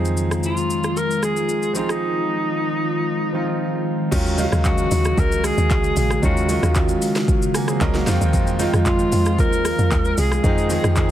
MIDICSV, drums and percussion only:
0, 0, Header, 1, 2, 480
1, 0, Start_track
1, 0, Tempo, 526316
1, 1840, Time_signature, 4, 2, 24, 8
1, 10132, End_track
2, 0, Start_track
2, 0, Title_t, "Drums"
2, 47, Note_on_c, 9, 82, 44
2, 138, Note_off_c, 9, 82, 0
2, 157, Note_on_c, 9, 82, 81
2, 248, Note_off_c, 9, 82, 0
2, 286, Note_on_c, 9, 37, 88
2, 288, Note_on_c, 9, 82, 54
2, 377, Note_off_c, 9, 37, 0
2, 379, Note_off_c, 9, 82, 0
2, 395, Note_on_c, 9, 82, 78
2, 487, Note_off_c, 9, 82, 0
2, 520, Note_on_c, 9, 82, 53
2, 611, Note_off_c, 9, 82, 0
2, 641, Note_on_c, 9, 82, 81
2, 733, Note_off_c, 9, 82, 0
2, 763, Note_on_c, 9, 82, 46
2, 769, Note_on_c, 9, 37, 84
2, 854, Note_off_c, 9, 82, 0
2, 860, Note_off_c, 9, 37, 0
2, 884, Note_on_c, 9, 82, 64
2, 975, Note_off_c, 9, 82, 0
2, 1010, Note_on_c, 9, 82, 52
2, 1101, Note_off_c, 9, 82, 0
2, 1120, Note_on_c, 9, 37, 95
2, 1123, Note_on_c, 9, 82, 90
2, 1211, Note_off_c, 9, 37, 0
2, 1214, Note_off_c, 9, 82, 0
2, 1245, Note_on_c, 9, 82, 56
2, 1337, Note_off_c, 9, 82, 0
2, 1359, Note_on_c, 9, 82, 70
2, 1450, Note_off_c, 9, 82, 0
2, 1483, Note_on_c, 9, 82, 44
2, 1574, Note_off_c, 9, 82, 0
2, 1598, Note_on_c, 9, 82, 91
2, 1689, Note_off_c, 9, 82, 0
2, 1726, Note_on_c, 9, 37, 97
2, 1731, Note_on_c, 9, 82, 51
2, 1817, Note_off_c, 9, 37, 0
2, 1823, Note_off_c, 9, 82, 0
2, 3760, Note_on_c, 9, 36, 114
2, 3760, Note_on_c, 9, 49, 105
2, 3762, Note_on_c, 9, 82, 74
2, 3851, Note_off_c, 9, 36, 0
2, 3851, Note_off_c, 9, 49, 0
2, 3853, Note_off_c, 9, 82, 0
2, 3887, Note_on_c, 9, 82, 49
2, 3978, Note_off_c, 9, 82, 0
2, 3996, Note_on_c, 9, 46, 49
2, 3996, Note_on_c, 9, 82, 90
2, 4087, Note_off_c, 9, 46, 0
2, 4087, Note_off_c, 9, 82, 0
2, 4126, Note_on_c, 9, 37, 96
2, 4128, Note_on_c, 9, 82, 59
2, 4217, Note_off_c, 9, 37, 0
2, 4219, Note_off_c, 9, 82, 0
2, 4235, Note_on_c, 9, 82, 89
2, 4239, Note_on_c, 9, 39, 100
2, 4242, Note_on_c, 9, 36, 94
2, 4326, Note_off_c, 9, 82, 0
2, 4330, Note_off_c, 9, 39, 0
2, 4333, Note_off_c, 9, 36, 0
2, 4359, Note_on_c, 9, 82, 57
2, 4450, Note_off_c, 9, 82, 0
2, 4480, Note_on_c, 9, 46, 52
2, 4480, Note_on_c, 9, 82, 92
2, 4572, Note_off_c, 9, 46, 0
2, 4572, Note_off_c, 9, 82, 0
2, 4603, Note_on_c, 9, 82, 49
2, 4609, Note_on_c, 9, 37, 97
2, 4695, Note_off_c, 9, 82, 0
2, 4701, Note_off_c, 9, 37, 0
2, 4720, Note_on_c, 9, 36, 123
2, 4723, Note_on_c, 9, 82, 68
2, 4811, Note_off_c, 9, 36, 0
2, 4814, Note_off_c, 9, 82, 0
2, 4852, Note_on_c, 9, 82, 59
2, 4943, Note_off_c, 9, 82, 0
2, 4961, Note_on_c, 9, 37, 100
2, 4964, Note_on_c, 9, 46, 56
2, 4964, Note_on_c, 9, 82, 101
2, 5052, Note_off_c, 9, 37, 0
2, 5055, Note_off_c, 9, 46, 0
2, 5055, Note_off_c, 9, 82, 0
2, 5087, Note_on_c, 9, 82, 60
2, 5179, Note_off_c, 9, 82, 0
2, 5200, Note_on_c, 9, 82, 77
2, 5203, Note_on_c, 9, 39, 106
2, 5204, Note_on_c, 9, 36, 107
2, 5292, Note_off_c, 9, 82, 0
2, 5294, Note_off_c, 9, 39, 0
2, 5295, Note_off_c, 9, 36, 0
2, 5325, Note_on_c, 9, 82, 49
2, 5416, Note_off_c, 9, 82, 0
2, 5440, Note_on_c, 9, 46, 58
2, 5440, Note_on_c, 9, 82, 98
2, 5532, Note_off_c, 9, 46, 0
2, 5532, Note_off_c, 9, 82, 0
2, 5568, Note_on_c, 9, 37, 103
2, 5573, Note_on_c, 9, 82, 57
2, 5659, Note_off_c, 9, 37, 0
2, 5664, Note_off_c, 9, 82, 0
2, 5681, Note_on_c, 9, 36, 110
2, 5682, Note_on_c, 9, 82, 74
2, 5772, Note_off_c, 9, 36, 0
2, 5774, Note_off_c, 9, 82, 0
2, 5809, Note_on_c, 9, 82, 51
2, 5900, Note_off_c, 9, 82, 0
2, 5919, Note_on_c, 9, 46, 51
2, 5919, Note_on_c, 9, 82, 86
2, 6011, Note_off_c, 9, 46, 0
2, 6011, Note_off_c, 9, 82, 0
2, 6047, Note_on_c, 9, 37, 92
2, 6049, Note_on_c, 9, 82, 60
2, 6138, Note_off_c, 9, 37, 0
2, 6140, Note_off_c, 9, 82, 0
2, 6156, Note_on_c, 9, 82, 87
2, 6160, Note_on_c, 9, 39, 102
2, 6163, Note_on_c, 9, 36, 95
2, 6247, Note_off_c, 9, 82, 0
2, 6251, Note_off_c, 9, 39, 0
2, 6254, Note_off_c, 9, 36, 0
2, 6280, Note_on_c, 9, 82, 55
2, 6372, Note_off_c, 9, 82, 0
2, 6402, Note_on_c, 9, 46, 52
2, 6402, Note_on_c, 9, 82, 85
2, 6493, Note_off_c, 9, 46, 0
2, 6493, Note_off_c, 9, 82, 0
2, 6524, Note_on_c, 9, 82, 50
2, 6530, Note_on_c, 9, 38, 70
2, 6615, Note_off_c, 9, 82, 0
2, 6621, Note_off_c, 9, 38, 0
2, 6640, Note_on_c, 9, 36, 120
2, 6643, Note_on_c, 9, 82, 70
2, 6731, Note_off_c, 9, 36, 0
2, 6734, Note_off_c, 9, 82, 0
2, 6771, Note_on_c, 9, 82, 58
2, 6863, Note_off_c, 9, 82, 0
2, 6881, Note_on_c, 9, 37, 100
2, 6883, Note_on_c, 9, 46, 58
2, 6883, Note_on_c, 9, 82, 96
2, 6972, Note_off_c, 9, 37, 0
2, 6975, Note_off_c, 9, 46, 0
2, 6975, Note_off_c, 9, 82, 0
2, 7003, Note_on_c, 9, 37, 95
2, 7007, Note_on_c, 9, 82, 59
2, 7094, Note_off_c, 9, 37, 0
2, 7098, Note_off_c, 9, 82, 0
2, 7120, Note_on_c, 9, 82, 76
2, 7122, Note_on_c, 9, 39, 110
2, 7124, Note_on_c, 9, 36, 110
2, 7211, Note_off_c, 9, 82, 0
2, 7213, Note_off_c, 9, 39, 0
2, 7215, Note_off_c, 9, 36, 0
2, 7244, Note_on_c, 9, 82, 47
2, 7246, Note_on_c, 9, 38, 63
2, 7336, Note_off_c, 9, 82, 0
2, 7337, Note_off_c, 9, 38, 0
2, 7360, Note_on_c, 9, 46, 56
2, 7360, Note_on_c, 9, 82, 97
2, 7361, Note_on_c, 9, 38, 72
2, 7451, Note_off_c, 9, 46, 0
2, 7451, Note_off_c, 9, 82, 0
2, 7452, Note_off_c, 9, 38, 0
2, 7492, Note_on_c, 9, 82, 56
2, 7584, Note_off_c, 9, 82, 0
2, 7600, Note_on_c, 9, 36, 114
2, 7601, Note_on_c, 9, 82, 78
2, 7691, Note_off_c, 9, 36, 0
2, 7692, Note_off_c, 9, 82, 0
2, 7727, Note_on_c, 9, 82, 50
2, 7818, Note_off_c, 9, 82, 0
2, 7838, Note_on_c, 9, 46, 50
2, 7838, Note_on_c, 9, 82, 88
2, 7930, Note_off_c, 9, 46, 0
2, 7930, Note_off_c, 9, 82, 0
2, 7967, Note_on_c, 9, 37, 98
2, 7969, Note_on_c, 9, 82, 56
2, 8058, Note_off_c, 9, 37, 0
2, 8060, Note_off_c, 9, 82, 0
2, 8075, Note_on_c, 9, 82, 84
2, 8079, Note_on_c, 9, 39, 104
2, 8083, Note_on_c, 9, 36, 95
2, 8166, Note_off_c, 9, 82, 0
2, 8171, Note_off_c, 9, 39, 0
2, 8174, Note_off_c, 9, 36, 0
2, 8199, Note_on_c, 9, 82, 56
2, 8291, Note_off_c, 9, 82, 0
2, 8320, Note_on_c, 9, 46, 53
2, 8320, Note_on_c, 9, 82, 92
2, 8411, Note_off_c, 9, 46, 0
2, 8411, Note_off_c, 9, 82, 0
2, 8443, Note_on_c, 9, 82, 51
2, 8449, Note_on_c, 9, 37, 95
2, 8534, Note_off_c, 9, 82, 0
2, 8540, Note_off_c, 9, 37, 0
2, 8560, Note_on_c, 9, 36, 126
2, 8562, Note_on_c, 9, 82, 67
2, 8651, Note_off_c, 9, 36, 0
2, 8653, Note_off_c, 9, 82, 0
2, 8691, Note_on_c, 9, 82, 61
2, 8782, Note_off_c, 9, 82, 0
2, 8800, Note_on_c, 9, 37, 105
2, 8803, Note_on_c, 9, 46, 59
2, 8803, Note_on_c, 9, 82, 99
2, 8891, Note_off_c, 9, 37, 0
2, 8894, Note_off_c, 9, 46, 0
2, 8894, Note_off_c, 9, 82, 0
2, 8926, Note_on_c, 9, 82, 59
2, 9017, Note_off_c, 9, 82, 0
2, 9039, Note_on_c, 9, 82, 75
2, 9041, Note_on_c, 9, 39, 102
2, 9044, Note_on_c, 9, 36, 107
2, 9131, Note_off_c, 9, 82, 0
2, 9133, Note_off_c, 9, 39, 0
2, 9135, Note_off_c, 9, 36, 0
2, 9165, Note_on_c, 9, 82, 47
2, 9256, Note_off_c, 9, 82, 0
2, 9282, Note_on_c, 9, 46, 59
2, 9282, Note_on_c, 9, 82, 98
2, 9373, Note_off_c, 9, 46, 0
2, 9373, Note_off_c, 9, 82, 0
2, 9408, Note_on_c, 9, 37, 99
2, 9414, Note_on_c, 9, 82, 57
2, 9500, Note_off_c, 9, 37, 0
2, 9505, Note_off_c, 9, 82, 0
2, 9521, Note_on_c, 9, 36, 117
2, 9522, Note_on_c, 9, 82, 74
2, 9612, Note_off_c, 9, 36, 0
2, 9614, Note_off_c, 9, 82, 0
2, 9648, Note_on_c, 9, 82, 49
2, 9739, Note_off_c, 9, 82, 0
2, 9757, Note_on_c, 9, 46, 52
2, 9757, Note_on_c, 9, 82, 90
2, 9849, Note_off_c, 9, 46, 0
2, 9849, Note_off_c, 9, 82, 0
2, 9886, Note_on_c, 9, 37, 98
2, 9888, Note_on_c, 9, 82, 58
2, 9977, Note_off_c, 9, 37, 0
2, 9980, Note_off_c, 9, 82, 0
2, 9995, Note_on_c, 9, 82, 81
2, 9999, Note_on_c, 9, 39, 101
2, 10003, Note_on_c, 9, 36, 97
2, 10086, Note_off_c, 9, 82, 0
2, 10091, Note_off_c, 9, 39, 0
2, 10094, Note_off_c, 9, 36, 0
2, 10132, End_track
0, 0, End_of_file